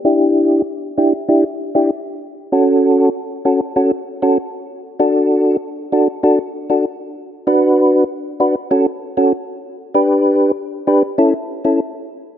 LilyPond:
\new Staff \with { instrumentName = "Tonewheel organ" } { \time 4/4 \key fis \phrygian \tempo 4 = 97 <d' e' g'>4 r8 <d' e' g'>16 r16 <d' e' g'>16 r8 <d' e' g'>16 r4 | <cis' fis' a'>4 r8 <cis' fis' a'>16 r16 <cis' fis' a'>16 r8 <cis' fis' a'>16 r4 | <d' fis' a'>4 r8 <d' fis' a'>16 r16 <d' fis' a'>16 r8 <d' fis' a'>16 r4 | <d' fis' b'>4 r8 <d' fis' b'>16 r16 <cis' fis' a'>16 r8 <cis' fis' a'>16 r4 |
<d' g' b'>4 r8 <d' g' b'>16 r16 <cis' e' a'>16 r8 <cis' e' a'>16 r4 | }